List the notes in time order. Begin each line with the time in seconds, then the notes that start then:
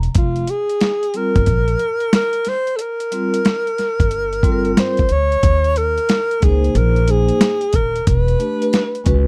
Already playing: A#5
0.03 closed hi-hat
0.15 F1 F4, kick, closed hi-hat
0.36 closed hi-hat
0.47 G#4, closed hi-hat
0.69 closed hi-hat
0.81 snare, closed hi-hat
1.03 closed hi-hat
1.14 G3 C4 F4 A#4, closed hi-hat
1.36 G1, kick, closed hi-hat
1.46 A#1, kick, closed hi-hat
1.68 closed hi-hat
1.79 closed hi-hat
2.00 closed hi-hat
2.13 A#4, snare, closed hi-hat
2.33 closed hi-hat
2.45 C5, snare, closed hi-hat
2.67 closed hi-hat
2.76 A4, closed hi-hat
2.81 A#4
3.00 closed hi-hat
3.11 G3 C4 F4 A#4, closed hi-hat
3.34 closed hi-hat
3.45 snare, closed hi-hat
3.67 closed hi-hat
3.78 snare, closed hi-hat
4.00 G1, kick, closed hi-hat
4.11 closed hi-hat
4.33 closed hi-hat
4.43 G3 C4 F4 A4, kick, closed hi-hat
4.52 A#4
4.65 closed hi-hat
4.77 C5, snare, closed hi-hat
4.97 kick, closed hi-hat
5.09 D2 C#5, closed hi-hat
5.32 closed hi-hat
5.43 D#2, kick, closed hi-hat
5.64 closed hi-hat
5.76 A#4, closed hi-hat
5.98 closed hi-hat
6.09 snare, closed hi-hat
6.31 closed hi-hat
6.40 C#2 A#3 D#4 G#4 A#4, kick, closed hi-hat
6.49 C5
6.64 closed hi-hat
6.75 A#1 A#4, closed hi-hat
6.96 closed hi-hat
7.06 A#3 D#4 G#4 C5, closed hi-hat
7.11 G#4
7.29 closed hi-hat
7.41 snare, closed hi-hat
7.61 closed hi-hat
7.73 D#1 A#4, kick, closed hi-hat
7.96 closed hi-hat
8.07 E1 B4, kick, closed hi-hat
8.28 closed hi-hat
8.39 A3 D4 G4 B4, closed hi-hat
8.62 closed hi-hat
8.73 snare, closed hi-hat
8.95 closed hi-hat
9.04 C#2 G#3 C#4 F#4 B4, kick, closed hi-hat